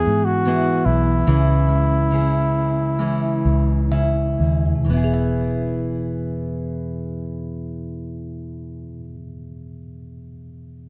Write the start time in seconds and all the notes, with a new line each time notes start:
Already playing: E3 B3 E4 G#4
0.07 G#2
0.25 F#4
0.45 E3 B3 E4 G#4
0.85 B1 E4
1.27 C#2 C#3 E3 C#4 E4 G#4
1.69 G#3
2.11 C#3 E3 C#4 E4 G#4
2.99 E3 G#3 C#4 E4 G#4
3.45 C#2
3.92 C#3 C#4 E4 G#4 E5
4.40 D#2
4.66 E2
4.75 B2
4.85 E3
4.89 E1 B3
4.93 B3 E4 G#4
5.04 G#4
5.14 E5